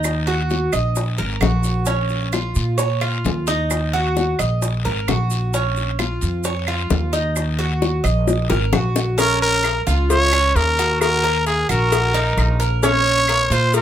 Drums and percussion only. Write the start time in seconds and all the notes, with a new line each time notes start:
0.04 high bongo, long guiro, claves, maracas
0.27 high bongo, maracas
0.50 high bongo, short guiro, maracas
0.73 short guiro, claves, maracas
0.96 high bongo, long guiro, maracas
1.18 high bongo, maracas
1.41 high bongo, low bongo, short guiro, claves, maracas
1.63 high bongo, short guiro, maracas
1.85 high bongo, long guiro, maracas
2.09 high bongo, maracas
2.32 high bongo, short guiro, claves, maracas
2.55 short guiro, maracas
2.78 high bongo, long guiro, maracas
3.01 high bongo, claves, maracas
3.25 high bongo, low bongo, short guiro, maracas
3.47 high bongo, short guiro, maracas
3.70 high bongo, long guiro, claves, maracas
3.94 high bongo, maracas
4.17 high bongo, short guiro, maracas
4.39 short guiro, claves, maracas
4.62 high bongo, long guiro, maracas
4.85 high bongo, maracas
5.08 high bongo, low bongo, short guiro, claves, maracas
5.30 high bongo, short guiro, maracas
5.54 high bongo, long guiro, maracas
5.76 high bongo, maracas
5.99 high bongo, short guiro, claves, maracas
6.21 short guiro, maracas
6.44 high bongo, long guiro, maracas
6.67 high bongo, claves, maracas
6.90 high bongo, low bongo, short guiro, maracas
7.13 high bongo, short guiro, maracas
7.36 high bongo, long guiro, claves, maracas
7.59 high bongo, maracas
7.82 high bongo, short guiro, maracas
8.04 short guiro, claves, maracas
8.27 high bongo, long guiro, maracas
8.50 high bongo, maracas
8.73 low bongo, short guiro, claves, maracas
8.96 low bongo, short guiro, maracas
9.18 cowbell, long guiro, maracas
9.42 maracas
9.64 cowbell, short guiro, claves, maracas
9.87 short guiro, maracas
10.10 cowbell, long guiro, maracas
10.33 claves, maracas
10.56 cowbell, short guiro, maracas
10.78 cowbell, short guiro, maracas
11.00 cowbell, long guiro, claves, maracas
11.24 maracas
11.47 cowbell, short guiro, maracas
11.69 short guiro, claves, maracas
11.92 cowbell, long guiro, maracas
12.15 cowbell, maracas
12.38 cowbell, short guiro, claves, maracas
12.61 short guiro, maracas
12.83 cowbell, long guiro, maracas
13.07 maracas
13.28 cowbell, short guiro, claves, maracas
13.50 short guiro, maracas
13.73 cowbell, long guiro, maracas